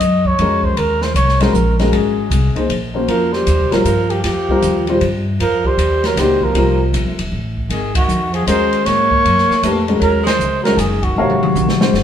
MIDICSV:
0, 0, Header, 1, 7, 480
1, 0, Start_track
1, 0, Tempo, 385109
1, 962, Time_signature, 3, 2, 24, 8
1, 14998, End_track
2, 0, Start_track
2, 0, Title_t, "Trumpet"
2, 0, Program_c, 0, 56
2, 0, Note_on_c, 0, 75, 97
2, 336, Note_on_c, 0, 73, 101
2, 355, Note_off_c, 0, 75, 0
2, 802, Note_on_c, 0, 72, 85
2, 821, Note_off_c, 0, 73, 0
2, 973, Note_on_c, 0, 70, 95
2, 992, Note_off_c, 0, 72, 0
2, 1283, Note_on_c, 0, 72, 84
2, 1302, Note_off_c, 0, 70, 0
2, 1436, Note_off_c, 0, 72, 0
2, 1443, Note_on_c, 0, 73, 94
2, 1763, Note_on_c, 0, 72, 85
2, 1781, Note_off_c, 0, 73, 0
2, 1918, Note_on_c, 0, 70, 81
2, 1937, Note_off_c, 0, 72, 0
2, 2230, Note_off_c, 0, 70, 0
2, 2236, Note_on_c, 0, 70, 71
2, 2412, Note_on_c, 0, 68, 72
2, 2431, Note_off_c, 0, 70, 0
2, 3369, Note_off_c, 0, 68, 0
2, 3848, Note_on_c, 0, 70, 91
2, 4152, Note_on_c, 0, 72, 91
2, 4170, Note_off_c, 0, 70, 0
2, 4639, Note_on_c, 0, 70, 88
2, 4657, Note_off_c, 0, 72, 0
2, 4790, Note_off_c, 0, 70, 0
2, 4797, Note_on_c, 0, 70, 87
2, 5116, Note_on_c, 0, 67, 68
2, 5134, Note_off_c, 0, 70, 0
2, 5262, Note_off_c, 0, 67, 0
2, 5269, Note_on_c, 0, 67, 83
2, 6188, Note_off_c, 0, 67, 0
2, 6750, Note_on_c, 0, 70, 95
2, 7068, Note_on_c, 0, 72, 96
2, 7087, Note_off_c, 0, 70, 0
2, 7552, Note_on_c, 0, 70, 88
2, 7571, Note_off_c, 0, 72, 0
2, 7728, Note_on_c, 0, 72, 93
2, 7747, Note_off_c, 0, 70, 0
2, 8028, Note_on_c, 0, 70, 77
2, 8046, Note_off_c, 0, 72, 0
2, 8491, Note_off_c, 0, 70, 0
2, 9620, Note_on_c, 0, 68, 85
2, 9901, Note_off_c, 0, 68, 0
2, 9919, Note_on_c, 0, 66, 88
2, 10363, Note_off_c, 0, 66, 0
2, 10402, Note_on_c, 0, 68, 85
2, 10557, Note_off_c, 0, 68, 0
2, 10565, Note_on_c, 0, 72, 104
2, 11042, Note_on_c, 0, 73, 112
2, 11061, Note_off_c, 0, 72, 0
2, 12311, Note_off_c, 0, 73, 0
2, 12478, Note_on_c, 0, 70, 98
2, 12768, Note_off_c, 0, 70, 0
2, 12791, Note_on_c, 0, 72, 95
2, 13237, Note_off_c, 0, 72, 0
2, 13258, Note_on_c, 0, 70, 90
2, 13439, Note_on_c, 0, 68, 88
2, 13458, Note_off_c, 0, 70, 0
2, 13752, Note_on_c, 0, 66, 84
2, 13770, Note_off_c, 0, 68, 0
2, 14998, Note_off_c, 0, 66, 0
2, 14998, End_track
3, 0, Start_track
3, 0, Title_t, "Grand piano"
3, 0, Program_c, 1, 0
3, 491, Note_on_c, 1, 56, 48
3, 498, Note_on_c, 1, 61, 46
3, 507, Note_on_c, 1, 66, 44
3, 512, Note_on_c, 1, 70, 62
3, 1214, Note_off_c, 1, 56, 0
3, 1218, Note_off_c, 1, 61, 0
3, 1222, Note_off_c, 1, 66, 0
3, 1225, Note_off_c, 1, 70, 0
3, 1747, Note_on_c, 1, 56, 73
3, 1755, Note_on_c, 1, 61, 62
3, 1760, Note_on_c, 1, 66, 62
3, 1771, Note_on_c, 1, 70, 76
3, 1903, Note_off_c, 1, 56, 0
3, 1907, Note_off_c, 1, 61, 0
3, 1910, Note_off_c, 1, 66, 0
3, 1915, Note_off_c, 1, 70, 0
3, 2236, Note_on_c, 1, 56, 63
3, 2240, Note_on_c, 1, 61, 59
3, 2251, Note_on_c, 1, 66, 57
3, 2252, Note_on_c, 1, 70, 67
3, 2851, Note_off_c, 1, 56, 0
3, 2853, Note_off_c, 1, 61, 0
3, 2859, Note_off_c, 1, 66, 0
3, 2859, Note_off_c, 1, 70, 0
3, 3184, Note_on_c, 1, 58, 55
3, 3188, Note_on_c, 1, 63, 50
3, 3198, Note_on_c, 1, 68, 50
3, 3203, Note_on_c, 1, 72, 63
3, 3342, Note_off_c, 1, 58, 0
3, 3344, Note_off_c, 1, 63, 0
3, 3350, Note_off_c, 1, 68, 0
3, 3352, Note_off_c, 1, 72, 0
3, 3662, Note_on_c, 1, 58, 55
3, 3676, Note_on_c, 1, 61, 51
3, 3679, Note_on_c, 1, 66, 52
3, 3686, Note_on_c, 1, 72, 60
3, 4285, Note_off_c, 1, 58, 0
3, 4292, Note_off_c, 1, 61, 0
3, 4294, Note_off_c, 1, 66, 0
3, 4297, Note_off_c, 1, 72, 0
3, 4629, Note_on_c, 1, 55, 63
3, 4636, Note_on_c, 1, 60, 54
3, 4642, Note_on_c, 1, 65, 54
3, 4650, Note_on_c, 1, 70, 64
3, 4786, Note_off_c, 1, 55, 0
3, 4789, Note_off_c, 1, 60, 0
3, 4792, Note_off_c, 1, 65, 0
3, 4796, Note_off_c, 1, 70, 0
3, 5607, Note_on_c, 1, 55, 59
3, 5610, Note_on_c, 1, 60, 55
3, 5617, Note_on_c, 1, 65, 56
3, 5625, Note_on_c, 1, 70, 68
3, 6050, Note_off_c, 1, 55, 0
3, 6052, Note_off_c, 1, 60, 0
3, 6055, Note_off_c, 1, 65, 0
3, 6059, Note_off_c, 1, 70, 0
3, 6088, Note_on_c, 1, 55, 57
3, 6097, Note_on_c, 1, 60, 52
3, 6100, Note_on_c, 1, 65, 52
3, 6109, Note_on_c, 1, 72, 65
3, 6235, Note_off_c, 1, 55, 0
3, 6240, Note_off_c, 1, 60, 0
3, 6241, Note_off_c, 1, 65, 0
3, 6246, Note_off_c, 1, 72, 0
3, 7703, Note_on_c, 1, 66, 53
3, 7704, Note_on_c, 1, 58, 46
3, 7714, Note_on_c, 1, 67, 61
3, 7715, Note_on_c, 1, 63, 50
3, 8163, Note_on_c, 1, 55, 60
3, 8170, Note_on_c, 1, 60, 50
3, 8178, Note_on_c, 1, 65, 54
3, 8183, Note_on_c, 1, 70, 67
3, 8422, Note_off_c, 1, 58, 0
3, 8422, Note_off_c, 1, 66, 0
3, 8427, Note_off_c, 1, 67, 0
3, 8428, Note_off_c, 1, 63, 0
3, 8891, Note_off_c, 1, 55, 0
3, 8895, Note_off_c, 1, 60, 0
3, 8899, Note_off_c, 1, 65, 0
3, 8901, Note_off_c, 1, 70, 0
3, 10558, Note_on_c, 1, 56, 59
3, 10564, Note_on_c, 1, 61, 52
3, 10575, Note_on_c, 1, 66, 55
3, 10582, Note_on_c, 1, 70, 70
3, 11288, Note_off_c, 1, 56, 0
3, 11291, Note_off_c, 1, 61, 0
3, 11297, Note_off_c, 1, 66, 0
3, 11300, Note_off_c, 1, 70, 0
3, 12007, Note_on_c, 1, 57, 53
3, 12015, Note_on_c, 1, 62, 50
3, 12015, Note_on_c, 1, 67, 46
3, 12030, Note_on_c, 1, 71, 68
3, 12283, Note_off_c, 1, 57, 0
3, 12287, Note_off_c, 1, 62, 0
3, 12287, Note_off_c, 1, 67, 0
3, 12294, Note_off_c, 1, 71, 0
3, 12324, Note_on_c, 1, 56, 59
3, 12326, Note_on_c, 1, 61, 55
3, 12336, Note_on_c, 1, 66, 53
3, 12341, Note_on_c, 1, 70, 58
3, 12736, Note_off_c, 1, 56, 0
3, 12736, Note_off_c, 1, 61, 0
3, 12742, Note_off_c, 1, 66, 0
3, 12744, Note_off_c, 1, 70, 0
3, 13290, Note_on_c, 1, 56, 62
3, 13293, Note_on_c, 1, 61, 58
3, 13298, Note_on_c, 1, 66, 61
3, 13308, Note_on_c, 1, 70, 71
3, 13434, Note_off_c, 1, 56, 0
3, 13436, Note_off_c, 1, 61, 0
3, 13438, Note_off_c, 1, 66, 0
3, 13443, Note_off_c, 1, 70, 0
3, 13937, Note_on_c, 1, 48, 66
3, 13937, Note_on_c, 1, 77, 66
3, 13943, Note_on_c, 1, 70, 65
3, 13954, Note_on_c, 1, 73, 76
3, 14655, Note_off_c, 1, 77, 0
3, 14656, Note_off_c, 1, 48, 0
3, 14658, Note_off_c, 1, 70, 0
3, 14664, Note_off_c, 1, 73, 0
3, 14705, Note_on_c, 1, 56, 55
3, 14714, Note_on_c, 1, 61, 57
3, 14724, Note_on_c, 1, 66, 60
3, 14732, Note_on_c, 1, 72, 66
3, 14861, Note_off_c, 1, 56, 0
3, 14865, Note_off_c, 1, 61, 0
3, 14870, Note_off_c, 1, 66, 0
3, 14874, Note_off_c, 1, 72, 0
3, 14998, End_track
4, 0, Start_track
4, 0, Title_t, "Tenor saxophone"
4, 0, Program_c, 2, 66
4, 3848, Note_on_c, 2, 53, 82
4, 4150, Note_on_c, 2, 55, 84
4, 4168, Note_off_c, 2, 53, 0
4, 4631, Note_on_c, 2, 54, 70
4, 4649, Note_off_c, 2, 55, 0
4, 4781, Note_off_c, 2, 54, 0
4, 4788, Note_on_c, 2, 53, 78
4, 5107, Note_off_c, 2, 53, 0
4, 5107, Note_on_c, 2, 53, 68
4, 5282, Note_off_c, 2, 53, 0
4, 5290, Note_on_c, 2, 53, 72
4, 6198, Note_off_c, 2, 53, 0
4, 6731, Note_on_c, 2, 53, 82
4, 7048, Note_on_c, 2, 55, 81
4, 7066, Note_off_c, 2, 53, 0
4, 7547, Note_on_c, 2, 54, 74
4, 7565, Note_off_c, 2, 55, 0
4, 7708, Note_on_c, 2, 55, 76
4, 7727, Note_off_c, 2, 54, 0
4, 8017, Note_on_c, 2, 53, 65
4, 8036, Note_off_c, 2, 55, 0
4, 8486, Note_off_c, 2, 53, 0
4, 9597, Note_on_c, 2, 51, 78
4, 9888, Note_off_c, 2, 51, 0
4, 9896, Note_on_c, 2, 51, 70
4, 10351, Note_off_c, 2, 51, 0
4, 10371, Note_on_c, 2, 53, 72
4, 10536, Note_off_c, 2, 53, 0
4, 10544, Note_on_c, 2, 56, 78
4, 11024, Note_on_c, 2, 58, 93
4, 11043, Note_off_c, 2, 56, 0
4, 12302, Note_off_c, 2, 58, 0
4, 12452, Note_on_c, 2, 54, 74
4, 12742, Note_off_c, 2, 54, 0
4, 12749, Note_on_c, 2, 56, 78
4, 13215, Note_off_c, 2, 56, 0
4, 13242, Note_on_c, 2, 54, 67
4, 13403, Note_on_c, 2, 51, 71
4, 13422, Note_off_c, 2, 54, 0
4, 13711, Note_off_c, 2, 51, 0
4, 13711, Note_on_c, 2, 51, 64
4, 14998, Note_off_c, 2, 51, 0
4, 14998, End_track
5, 0, Start_track
5, 0, Title_t, "Upright bass"
5, 0, Program_c, 3, 32
5, 1, Note_on_c, 3, 42, 80
5, 467, Note_off_c, 3, 42, 0
5, 483, Note_on_c, 3, 41, 83
5, 949, Note_off_c, 3, 41, 0
5, 961, Note_on_c, 3, 39, 74
5, 1418, Note_off_c, 3, 39, 0
5, 1425, Note_on_c, 3, 36, 84
5, 1900, Note_off_c, 3, 36, 0
5, 1907, Note_on_c, 3, 34, 86
5, 2381, Note_off_c, 3, 34, 0
5, 2389, Note_on_c, 3, 32, 68
5, 2862, Note_off_c, 3, 32, 0
5, 2868, Note_on_c, 3, 36, 86
5, 3163, Note_off_c, 3, 36, 0
5, 3351, Note_on_c, 3, 34, 70
5, 3823, Note_off_c, 3, 34, 0
5, 3835, Note_on_c, 3, 41, 61
5, 4305, Note_off_c, 3, 41, 0
5, 4323, Note_on_c, 3, 39, 82
5, 4482, Note_on_c, 3, 36, 49
5, 4501, Note_off_c, 3, 39, 0
5, 4636, Note_off_c, 3, 36, 0
5, 4643, Note_on_c, 3, 34, 61
5, 4785, Note_off_c, 3, 34, 0
5, 4793, Note_on_c, 3, 43, 78
5, 5265, Note_off_c, 3, 43, 0
5, 5279, Note_on_c, 3, 41, 69
5, 5748, Note_off_c, 3, 41, 0
5, 5767, Note_on_c, 3, 39, 79
5, 6232, Note_off_c, 3, 39, 0
5, 6242, Note_on_c, 3, 43, 87
5, 6709, Note_off_c, 3, 43, 0
5, 6729, Note_on_c, 3, 41, 69
5, 7188, Note_off_c, 3, 41, 0
5, 7195, Note_on_c, 3, 39, 81
5, 7666, Note_off_c, 3, 39, 0
5, 7674, Note_on_c, 3, 37, 82
5, 8145, Note_off_c, 3, 37, 0
5, 8152, Note_on_c, 3, 36, 70
5, 8624, Note_off_c, 3, 36, 0
5, 8635, Note_on_c, 3, 34, 83
5, 8791, Note_off_c, 3, 34, 0
5, 8791, Note_on_c, 3, 29, 46
5, 8958, Note_off_c, 3, 29, 0
5, 8964, Note_on_c, 3, 27, 61
5, 9110, Note_off_c, 3, 27, 0
5, 9117, Note_on_c, 3, 33, 77
5, 9583, Note_off_c, 3, 33, 0
5, 9590, Note_on_c, 3, 32, 72
5, 10063, Note_off_c, 3, 32, 0
5, 10075, Note_on_c, 3, 41, 85
5, 10545, Note_off_c, 3, 41, 0
5, 10554, Note_on_c, 3, 39, 71
5, 11024, Note_off_c, 3, 39, 0
5, 11045, Note_on_c, 3, 44, 66
5, 11510, Note_off_c, 3, 44, 0
5, 11528, Note_on_c, 3, 42, 79
5, 11813, Note_off_c, 3, 42, 0
5, 11999, Note_on_c, 3, 41, 75
5, 12466, Note_off_c, 3, 41, 0
5, 12477, Note_on_c, 3, 39, 79
5, 12945, Note_off_c, 3, 39, 0
5, 12951, Note_on_c, 3, 37, 86
5, 13418, Note_off_c, 3, 37, 0
5, 13425, Note_on_c, 3, 30, 81
5, 13898, Note_off_c, 3, 30, 0
5, 13912, Note_on_c, 3, 32, 77
5, 14381, Note_off_c, 3, 32, 0
5, 14398, Note_on_c, 3, 34, 81
5, 14864, Note_off_c, 3, 34, 0
5, 14871, Note_on_c, 3, 30, 76
5, 14998, Note_off_c, 3, 30, 0
5, 14998, End_track
6, 0, Start_track
6, 0, Title_t, "Muted upright bass strokes"
6, 3185, Note_on_c, 9, 29, 35
6, 3310, Note_off_c, 9, 29, 0
6, 11841, Note_on_c, 9, 29, 37
6, 11965, Note_off_c, 9, 29, 0
6, 14998, End_track
7, 0, Start_track
7, 0, Title_t, "Drums"
7, 6, Note_on_c, 9, 44, 50
7, 6, Note_on_c, 9, 51, 56
7, 131, Note_off_c, 9, 44, 0
7, 131, Note_off_c, 9, 51, 0
7, 312, Note_on_c, 9, 36, 47
7, 437, Note_off_c, 9, 36, 0
7, 482, Note_on_c, 9, 51, 56
7, 606, Note_off_c, 9, 51, 0
7, 789, Note_on_c, 9, 36, 53
7, 913, Note_off_c, 9, 36, 0
7, 960, Note_on_c, 9, 51, 56
7, 1084, Note_off_c, 9, 51, 0
7, 1266, Note_on_c, 9, 38, 47
7, 1391, Note_off_c, 9, 38, 0
7, 1441, Note_on_c, 9, 44, 55
7, 1441, Note_on_c, 9, 51, 62
7, 1565, Note_off_c, 9, 44, 0
7, 1565, Note_off_c, 9, 51, 0
7, 1601, Note_on_c, 9, 38, 30
7, 1726, Note_off_c, 9, 38, 0
7, 1750, Note_on_c, 9, 51, 59
7, 1765, Note_on_c, 9, 38, 42
7, 1875, Note_off_c, 9, 51, 0
7, 1890, Note_off_c, 9, 38, 0
7, 1924, Note_on_c, 9, 44, 56
7, 2049, Note_off_c, 9, 44, 0
7, 2236, Note_on_c, 9, 38, 36
7, 2236, Note_on_c, 9, 51, 43
7, 2360, Note_off_c, 9, 38, 0
7, 2360, Note_off_c, 9, 51, 0
7, 2403, Note_on_c, 9, 51, 58
7, 2527, Note_off_c, 9, 51, 0
7, 2884, Note_on_c, 9, 44, 51
7, 2884, Note_on_c, 9, 51, 66
7, 3008, Note_off_c, 9, 44, 0
7, 3008, Note_off_c, 9, 51, 0
7, 3190, Note_on_c, 9, 36, 44
7, 3192, Note_on_c, 9, 51, 42
7, 3315, Note_off_c, 9, 36, 0
7, 3317, Note_off_c, 9, 51, 0
7, 3363, Note_on_c, 9, 51, 59
7, 3487, Note_off_c, 9, 51, 0
7, 3843, Note_on_c, 9, 51, 55
7, 3968, Note_off_c, 9, 51, 0
7, 4150, Note_on_c, 9, 38, 33
7, 4275, Note_off_c, 9, 38, 0
7, 4321, Note_on_c, 9, 44, 51
7, 4321, Note_on_c, 9, 51, 66
7, 4445, Note_off_c, 9, 44, 0
7, 4445, Note_off_c, 9, 51, 0
7, 4638, Note_on_c, 9, 38, 46
7, 4638, Note_on_c, 9, 51, 40
7, 4762, Note_off_c, 9, 38, 0
7, 4762, Note_off_c, 9, 51, 0
7, 4804, Note_on_c, 9, 44, 58
7, 4804, Note_on_c, 9, 51, 62
7, 4928, Note_off_c, 9, 44, 0
7, 4928, Note_off_c, 9, 51, 0
7, 5112, Note_on_c, 9, 51, 42
7, 5236, Note_off_c, 9, 51, 0
7, 5282, Note_on_c, 9, 38, 39
7, 5282, Note_on_c, 9, 51, 67
7, 5407, Note_off_c, 9, 38, 0
7, 5407, Note_off_c, 9, 51, 0
7, 5594, Note_on_c, 9, 36, 52
7, 5719, Note_off_c, 9, 36, 0
7, 5763, Note_on_c, 9, 44, 58
7, 5763, Note_on_c, 9, 51, 52
7, 5887, Note_off_c, 9, 44, 0
7, 5887, Note_off_c, 9, 51, 0
7, 6072, Note_on_c, 9, 51, 44
7, 6197, Note_off_c, 9, 51, 0
7, 6245, Note_on_c, 9, 51, 57
7, 6369, Note_off_c, 9, 51, 0
7, 6734, Note_on_c, 9, 51, 62
7, 6858, Note_off_c, 9, 51, 0
7, 7037, Note_on_c, 9, 36, 58
7, 7162, Note_off_c, 9, 36, 0
7, 7211, Note_on_c, 9, 44, 49
7, 7211, Note_on_c, 9, 51, 64
7, 7336, Note_off_c, 9, 44, 0
7, 7336, Note_off_c, 9, 51, 0
7, 7524, Note_on_c, 9, 38, 50
7, 7524, Note_on_c, 9, 51, 42
7, 7649, Note_off_c, 9, 38, 0
7, 7649, Note_off_c, 9, 51, 0
7, 7693, Note_on_c, 9, 38, 36
7, 7693, Note_on_c, 9, 44, 57
7, 7693, Note_on_c, 9, 51, 66
7, 7818, Note_off_c, 9, 38, 0
7, 7818, Note_off_c, 9, 44, 0
7, 7818, Note_off_c, 9, 51, 0
7, 7996, Note_on_c, 9, 36, 49
7, 8121, Note_off_c, 9, 36, 0
7, 8163, Note_on_c, 9, 51, 63
7, 8288, Note_off_c, 9, 51, 0
7, 8649, Note_on_c, 9, 44, 52
7, 8649, Note_on_c, 9, 51, 66
7, 8774, Note_off_c, 9, 44, 0
7, 8774, Note_off_c, 9, 51, 0
7, 8958, Note_on_c, 9, 51, 59
7, 9083, Note_off_c, 9, 51, 0
7, 9434, Note_on_c, 9, 36, 38
7, 9558, Note_off_c, 9, 36, 0
7, 9601, Note_on_c, 9, 51, 61
7, 9726, Note_off_c, 9, 51, 0
7, 9910, Note_on_c, 9, 51, 75
7, 9911, Note_on_c, 9, 36, 84
7, 10035, Note_off_c, 9, 51, 0
7, 10036, Note_off_c, 9, 36, 0
7, 10082, Note_on_c, 9, 44, 65
7, 10207, Note_off_c, 9, 44, 0
7, 10392, Note_on_c, 9, 51, 44
7, 10516, Note_off_c, 9, 51, 0
7, 10562, Note_on_c, 9, 44, 54
7, 10562, Note_on_c, 9, 51, 67
7, 10687, Note_off_c, 9, 44, 0
7, 10687, Note_off_c, 9, 51, 0
7, 10876, Note_on_c, 9, 51, 45
7, 11000, Note_off_c, 9, 51, 0
7, 11045, Note_on_c, 9, 38, 37
7, 11045, Note_on_c, 9, 51, 62
7, 11169, Note_off_c, 9, 38, 0
7, 11169, Note_off_c, 9, 51, 0
7, 11355, Note_on_c, 9, 36, 56
7, 11480, Note_off_c, 9, 36, 0
7, 11535, Note_on_c, 9, 51, 56
7, 11660, Note_off_c, 9, 51, 0
7, 11690, Note_on_c, 9, 38, 28
7, 11815, Note_off_c, 9, 38, 0
7, 11850, Note_on_c, 9, 38, 39
7, 11975, Note_off_c, 9, 38, 0
7, 12006, Note_on_c, 9, 44, 51
7, 12006, Note_on_c, 9, 51, 65
7, 12131, Note_off_c, 9, 44, 0
7, 12131, Note_off_c, 9, 51, 0
7, 12315, Note_on_c, 9, 51, 42
7, 12440, Note_off_c, 9, 51, 0
7, 12483, Note_on_c, 9, 51, 55
7, 12607, Note_off_c, 9, 51, 0
7, 12797, Note_on_c, 9, 38, 75
7, 12797, Note_on_c, 9, 51, 65
7, 12922, Note_off_c, 9, 38, 0
7, 12922, Note_off_c, 9, 51, 0
7, 12965, Note_on_c, 9, 44, 53
7, 13090, Note_off_c, 9, 44, 0
7, 13276, Note_on_c, 9, 38, 50
7, 13276, Note_on_c, 9, 51, 41
7, 13401, Note_off_c, 9, 38, 0
7, 13401, Note_off_c, 9, 51, 0
7, 13442, Note_on_c, 9, 44, 59
7, 13442, Note_on_c, 9, 51, 69
7, 13567, Note_off_c, 9, 44, 0
7, 13567, Note_off_c, 9, 51, 0
7, 13745, Note_on_c, 9, 51, 40
7, 13748, Note_on_c, 9, 36, 52
7, 13870, Note_off_c, 9, 51, 0
7, 13873, Note_off_c, 9, 36, 0
7, 14081, Note_on_c, 9, 48, 52
7, 14206, Note_off_c, 9, 48, 0
7, 14244, Note_on_c, 9, 47, 70
7, 14369, Note_off_c, 9, 47, 0
7, 14403, Note_on_c, 9, 44, 53
7, 14403, Note_on_c, 9, 48, 57
7, 14527, Note_off_c, 9, 44, 0
7, 14527, Note_off_c, 9, 48, 0
7, 14566, Note_on_c, 9, 38, 65
7, 14690, Note_off_c, 9, 38, 0
7, 14720, Note_on_c, 9, 38, 73
7, 14845, Note_off_c, 9, 38, 0
7, 14883, Note_on_c, 9, 38, 57
7, 14998, Note_off_c, 9, 38, 0
7, 14998, End_track
0, 0, End_of_file